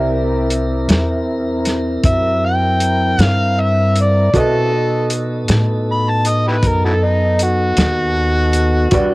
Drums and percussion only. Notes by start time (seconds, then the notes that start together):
0.50 closed hi-hat
0.89 snare, closed hi-hat
1.65 snare, closed hi-hat
2.04 kick, closed hi-hat
2.80 closed hi-hat
3.19 snare, closed hi-hat
3.96 closed hi-hat
4.34 kick, closed hi-hat
5.10 closed hi-hat
5.48 snare, closed hi-hat
6.25 closed hi-hat
6.63 kick, closed hi-hat
7.39 closed hi-hat
7.77 snare, closed hi-hat
8.53 closed hi-hat
8.91 kick, closed hi-hat